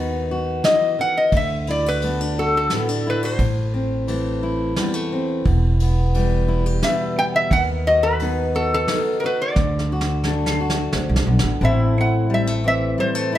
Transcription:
Already playing: D#2 D#3 B3 D#4 F#4
0.31 F#4
0.64 E3 D#5, snare, ride
0.99 D#3 F#5
1.17 D#5
1.32 D2 D3, kick, ride
1.37 E5
1.67 E4 D5, ride
1.86 F#4 B4
2.02 A3 B3, ride
2.21 D4
2.39 F#4 A4
2.57 A4
2.70 A2 B3, snare, ride
2.89 D4
3.07 E4 B4
3.23 F#4 C5
3.39 A1 A2, kick, ride
3.74 C4
4.08 E3 A3, ride
4.43 E4
4.76 E2 G3, snare, ride
4.94 A3
5.12 C4
5.45 E1 E2, kick, ride
5.80 B3, ride
6.14 E3 G3, ride
6.48 E4
6.66 G4
6.83 B2 G3 E5, snare, ride
7.19 B3 G5
7.36 E5
7.51 D#2 D#3 F#5, kick, ride
7.87 F#4 D#5
8.03 B4
8.19 B3 D#4, ride
8.55 F#4 A4
8.74 A4
8.88 D#3 D#4, snare, ride
9.20 F#4 A#4
9.26 B4
9.42 D5
9.56 D2 D3, kick, snare
9.79 snare
9.92 F#4
10.01 snare
10.24 A3 D4, snare
10.46 snare
10.52 C5
10.60 F#4
10.70 snare
10.93 D2 C3, snare
11.09 C2
11.16 snare
11.27 B1 B2
11.39 snare
11.44 A1
11.61 A1 A2 A3 C4 E4 E5
11.98 C4 F#5
12.30 G3
12.34 E5
12.47 A3
12.64 E3 C4 E5
12.98 G3 C5
13.15 A3
13.32 E4

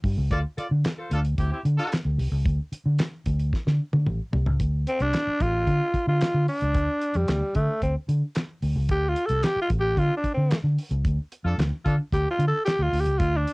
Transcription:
0.04 G2, kick, open hi-hat
0.18 C#2
0.31 D2 F4 A4 D5, kick, closed hi-hat
0.57 F4 A4 D5, muted fingered electric bass stroke, closed hi-hat
0.71 D3
0.84 snare, clap, closed hi-hat
0.98 F4 A4 C5
1.11 D2 D4 F4 A4, closed hi-hat
1.25 closed hi-hat
1.38 D2 C4 E4 G4, kick, closed hi-hat
1.51 C4 E4 G4
1.65 D3, closed hi-hat
1.78 D4 F4 A4, closed hi-hat
1.92 snare, clap, closed hi-hat
2.05 D2
2.18 C2, open hi-hat
2.32 C#2
2.46 D2, kick, closed hi-hat
2.72 muted fingered electric bass stroke, closed hi-hat
2.86 D3
2.99 snare, clap, closed hi-hat
3.26 D2, kick, closed hi-hat
3.39 closed hi-hat
3.53 kick, snare
3.67 D3, snare
3.93 D3, high tom
4.06 A1, mid tom
4.33 C2, floor tom
4.46 C#2, floor tom
4.60 D2, kick, closed hi-hat
4.87 C4, closed hi-hat
5.00 C2 D4, closed hi-hat
5.13 snare, clap, closed hi-hat
5.27 muted fingered electric bass stroke
5.40 A1 F4, kick, closed hi-hat
5.67 D3, kick, closed hi-hat
5.94 muted fingered electric bass stroke, kick, closed hi-hat
6.07 D3 F4
6.21 snare, clap, closed hi-hat
6.34 D3
6.48 D4, open hi-hat
6.61 C#2, closed hi-hat
6.74 D2, kick, closed hi-hat
7.01 closed hi-hat
7.14 F2 G3, closed hi-hat
7.28 D2, snare, clap, closed hi-hat
7.55 D3 A3, kick, closed hi-hat
7.82 D2 C4, kick, closed hi-hat
8.09 D3, closed hi-hat
8.35 snare, clap, closed hi-hat
8.62 D2, open hi-hat
8.76 C#2
8.89 D2 G4, kick, closed hi-hat
9.09 F4
9.16 closed hi-hat
9.26 C2 A4, closed hi-hat
9.43 G4, snare, clap, closed hi-hat
9.56 muted fingered electric bass stroke
9.61 F4
9.70 A1, kick, closed hi-hat
9.80 G4
9.97 D3 F4, kick, closed hi-hat
10.17 D4
10.24 muted fingered electric bass stroke, kick, closed hi-hat
10.34 D3 C4
10.51 snare, clap, closed hi-hat
10.64 D3
10.78 open hi-hat
10.91 C#2, closed hi-hat
11.05 D2, kick, closed hi-hat
11.32 closed hi-hat
11.45 F2 D4 F4 A4
11.58 D2, snare, clap, closed hi-hat
11.85 D3 D4 F4 A4, kick, closed hi-hat
12.12 D2 G4, kick, closed hi-hat
12.31 F4
12.39 D3, closed hi-hat
12.47 A4
12.65 G4, snare, clap, closed hi-hat
12.79 D2 F4
12.93 D2, open hi-hat
13.00 G4
13.06 C#2, closed hi-hat
13.18 D2 F4, kick, closed hi-hat
13.37 D4
13.47 closed hi-hat

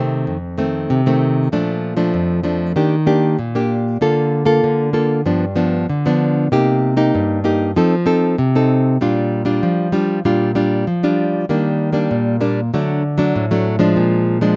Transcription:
Already playing: C3 D#3 A3 C4
0.27 F2
0.58 D#3 A3 C4
0.90 C3
1.06 D#3 A3 C4
1.52 A#2 F3 A3 D4
1.97 F3 A3 D4
2.14 F2
2.44 F3 A3 D4
2.76 D#3 A#3 D4 G4
3.06 A#3 D4 G4
3.39 A#2
3.55 A#3 D4 G4
4.01 D3 A#3 F4 A4
4.45 A#3 F4 A4
4.64 D3
4.93 A#3 F4 A4
5.26 G2 F3 B3 D4
5.56 F3 B3 D4
5.89 D3
6.06 F3 B3 D4
6.52 C3 A#3 D#4 G4
6.97 A#3 D#4 G4
7.15 G2
7.44 A#3 D#4 G4
7.76 F3 C4 D#4 A4
8.06 C4 D#4 A4
8.38 C3
8.55 C4 D#4 A4
9.01 A#2 G3 D4 F4
9.45 G3 D4 F4
9.63 F3
9.92 G3 D4 F4
10.25 A#2 G3 D4 F4
10.55 G3 D4 F4
10.87 F3
11.03 G3 D4 F4
11.49 D#3 G3 A#3 D4
11.93 G3 A#3 D4
12.11 A#2
12.41 G3 A#3 D4
12.74 D3 F#3 A3 D4
13.18 F#3 A3 D4
13.36 A2
13.51 F#3 A3 D4
13.79 F3 G#3 D4
13.96 A#2
14.41 F3 G#3 D4

